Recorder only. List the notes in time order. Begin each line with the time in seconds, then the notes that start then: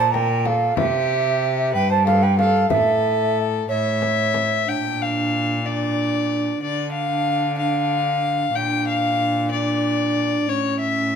0.00 A5
0.14 G5
0.46 F5
0.78 E5
1.75 G5
1.91 A5
2.07 F5
2.23 G5
2.38 F5
2.70 E5
3.69 C#5
4.67 D4
5.65 D4
6.62 D4
7.60 D4
8.55 D4
9.53 D4
10.48 C#4